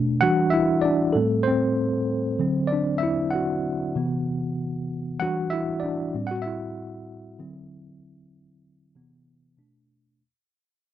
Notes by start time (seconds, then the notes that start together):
Already playing: B2 A3 D4
0.21 E3 G3 D4 F#4 F#5
0.50 E4 E5
0.82 D4 D5
1.13 A2 G3 C4 A4
1.17 A3
1.43 C5
1.48 C4
2.39 D3 F#3 C4
2.67 D5
2.73 D4
2.98 E5
3.03 E4
3.31 F#5
3.35 F#4
3.96 C3 E3 B3
5.20 E3 G3 D4 F#4 F#5
5.50 E4 E5
5.80 D5
5.84 D4
6.14 A2 G3 C4
6.27 F#5
6.31 F#4
6.42 E5
6.46 E4
7.39 D3 F#3 C4
8.95 C3 E3 B3
9.57 B2 A3 D4